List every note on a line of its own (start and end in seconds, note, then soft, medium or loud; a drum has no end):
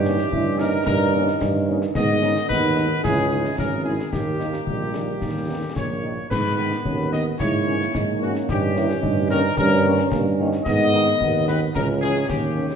0.00 0.23 G2 loud
0.00 0.86 E3 medium
0.00 1.91 C#4 medium
0.00 0.28 D#4 medium
0.00 0.59 G4 medium
0.04 0.14 A#3 medium
0.04 0.14 C#4 medium
0.04 0.14 D#4 medium
0.04 snare soft
0.18 snare soft
0.32 0.77 G2 medium
0.32 0.44 E4 medium
0.32 concert bass drum medium
0.59 0.69 A#3 medium
0.59 0.69 C#4 medium
0.59 0.69 D#4 medium
0.59 1.92 D#4 loud
0.59 0.85 A#4 medium
0.59 snare medium
0.86 1.32 G2 medium
0.86 1.94 D#3 medium
0.86 1.37 A#4 loud
0.86 concert bass drum medium
0.86 snare medium
1.13 1.23 A#3 medium
1.13 1.23 C#4 medium
1.13 1.23 D#4 medium
1.28 snare soft
1.41 1.86 G2 medium
1.41 concert bass drum medium
1.41 snare medium
1.67 1.77 A#3 medium
1.67 1.77 C#4 medium
1.67 1.77 D#4 medium
1.82 snare medium
1.95 2.41 G#2 medium
1.95 2.46 D#3 medium
1.95 2.46 B3 medium
1.95 2.21 B3 medium
1.95 2.46 D#5 loud
1.95 concert bass drum medium
1.95 snare medium
1.95 crash soft
2.22 2.32 G#3 medium
2.22 2.32 B3 medium
2.22 2.35 C#4 medium
2.22 2.32 D#4 medium
2.22 snare soft
2.36 snare medium
2.49 2.95 D#2 medium
2.49 3.00 D#3 medium
2.49 3.00 B3 medium
2.49 3.00 D#4 medium
2.49 3.00 B4 loud
2.49 concert bass drum medium
2.76 2.86 G#3 medium
2.76 2.86 B3 medium
2.76 2.86 D#4 medium
2.76 snare medium
3.03 3.49 C#2 medium
3.03 3.95 E3 medium
3.03 3.54 C#4 medium
3.03 3.16 E4 medium
3.03 3.55 G#4 medium
3.03 concert bass drum medium
3.03 snare medium
3.30 3.40 G#3 medium
3.30 3.40 C#4 medium
3.30 3.56 D#4 medium
3.30 3.40 E4 medium
3.45 snare medium
3.58 4.04 G#1 medium
3.58 3.96 B3 medium
3.58 3.91 C#4 medium
3.58 3.84 A#4 medium
3.58 concert bass drum medium
3.58 snare medium
3.84 3.95 G#3 soft
3.84 3.94 C#4 soft
3.84 3.94 E4 medium
3.84 4.10 G#4 medium
4.00 snare soft
4.12 4.58 D#2 medium
4.12 5.72 D#3 medium
4.12 4.58 A#3 medium
4.12 5.76 A#3 medium
4.12 5.72 G4 medium
4.12 concert bass drum medium
4.12 snare medium
4.39 4.49 D#3 soft
4.39 4.49 A#3 soft
4.39 4.49 D#4 soft
4.39 snare soft
4.53 snare soft
4.66 5.12 A#1 medium
4.66 5.44 G3 medium
4.66 concert bass drum medium
4.94 5.04 D#3 soft
4.94 5.04 A#3 soft
4.94 5.04 D#4 soft
4.94 snare medium
5.21 5.67 D#2 medium
5.21 concert bass drum medium
5.21 snare medium
5.48 5.58 D#3 soft
5.48 5.58 A#3 soft
5.48 5.60 B3 medium
5.48 5.58 D#4 soft
5.75 6.18 A#1 medium
5.75 5.89 D#3 medium
5.75 6.26 A#3 soft
5.75 5.89 A#3 soft
5.75 6.27 C#5 medium
5.75 concert bass drum medium
5.75 snare medium
6.03 6.13 D#3 soft
6.03 6.13 A#3 soft
6.03 6.13 D#4 soft
6.29 6.76 G#2 medium
6.29 7.36 D#3 medium
6.29 6.42 B3 medium
6.29 7.36 B3 medium
6.29 7.08 B4 medium
6.29 concert bass drum medium
6.29 snare medium
6.29 crash soft
6.56 6.68 D#3 medium
6.56 6.68 B3 medium
6.56 6.69 D#4 medium
6.56 6.68 D#4 medium
6.56 snare soft
6.72 snare soft
6.84 7.31 D#2 medium
6.84 7.10 C#4 medium
6.84 concert bass drum medium
7.11 7.22 D#3 medium
7.11 7.37 B3 medium
7.11 7.22 B3 medium
7.11 7.22 D#4 medium
7.11 7.25 D#5 medium
7.11 snare medium
7.39 7.85 G#2 medium
7.39 8.49 E3 medium
7.39 8.49 A#3 medium
7.39 7.90 E4 medium
7.39 8.17 C#5 medium
7.39 concert bass drum medium
7.39 snare medium
7.67 7.76 E3 medium
7.67 7.77 A#3 medium
7.67 7.76 C#4 medium
7.81 snare soft
7.94 8.40 G#2 medium
7.94 8.24 D#4 medium
7.94 concert bass drum medium
7.94 snare medium
8.21 8.31 E3 medium
8.21 8.31 A#3 medium
8.21 8.31 C#4 medium
8.21 8.51 C#4 medium
8.21 8.34 F#4 medium
8.35 snare soft
8.49 8.94 G2 medium
8.49 10.63 D#3 medium
8.49 10.63 C#4 medium
8.49 8.75 D#4 medium
8.49 9.27 G4 medium
8.49 concert bass drum medium
8.49 snare medium
8.76 8.85 D#3 medium
8.76 8.85 A#3 medium
8.76 8.86 C#4 medium
8.76 8.88 E4 medium
8.76 snare medium
8.90 snare medium
9.03 9.48 G2 medium
9.03 9.53 D#4 medium
9.03 concert bass drum medium
9.30 9.40 D#3 medium
9.30 9.40 A#3 medium
9.30 9.40 C#4 medium
9.30 9.55 A#4 loud
9.30 snare medium
9.57 10.03 G2 loud
9.57 10.08 C#4 medium
9.57 10.08 A#4 loud
9.57 concert bass drum medium
9.57 snare medium
9.85 9.94 D#3 medium
9.85 9.94 A#3 medium
9.85 9.94 C#4 medium
9.98 snare medium
10.12 10.57 G2 medium
10.12 10.24 A#3 medium
10.12 concert bass drum medium
10.12 snare medium
10.39 10.49 D#3 medium
10.39 10.49 A#3 medium
10.39 10.49 C#4 medium
10.39 10.65 D#4 medium
10.53 snare soft
10.66 11.12 G#2 medium
10.66 11.71 D#3 medium
10.66 11.75 B3 medium
10.66 11.72 B3 medium
10.66 11.44 D#5 loud
10.66 concert bass drum medium
10.66 snare medium
10.66 crash soft
10.93 11.03 D#3 medium
10.93 11.03 B3 medium
10.93 11.03 D#4 medium
10.93 snare soft
11.07 snare soft
11.21 11.66 D#2 medium
11.21 concert bass drum medium
11.47 11.58 D#3 medium
11.47 11.58 B3 medium
11.47 11.58 D#4 medium
11.47 11.60 B4 medium
11.47 snare medium
11.74 12.21 C#2 medium
11.74 12.30 E3 medium
11.74 12.32 C#4 medium
11.74 12.76 C#4 medium
11.74 11.87 A#4 medium
11.74 concert bass drum medium
11.74 snare medium
12.02 12.12 E3 medium
12.02 12.12 C#4 medium
12.02 12.28 G#4 loud
12.16 snare soft
12.29 12.71 D#2 medium
12.29 12.69 D#3 medium
12.29 12.66 A#3 medium
12.29 12.76 G4 medium
12.29 concert bass drum medium
12.29 snare medium
12.56 12.66 D#3 soft
12.56 12.66 A#3 soft
12.56 12.66 C#4 soft
12.71 snare soft